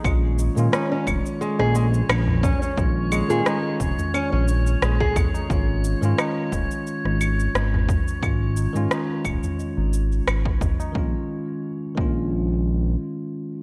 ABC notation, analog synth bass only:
X:1
M:4/4
L:1/16
Q:"Swing 16ths" 1/4=88
K:Bbm
V:1 name="Analog synth bass" clef=bass
B,,,3 B,, z2 F,,, z2 B,,,3 B,,,3 z | B,,,3 B,, z2 F,,, z2 B,,,3 B,,,3 z | A,,,3 A,, z2 E,,, z2 A,,,3 A,,,3 z | A,,,3 A,, z2 E,,, z2 A,,,3 A,,,3 z |
B,,, z4 z B,,,6 z4 |]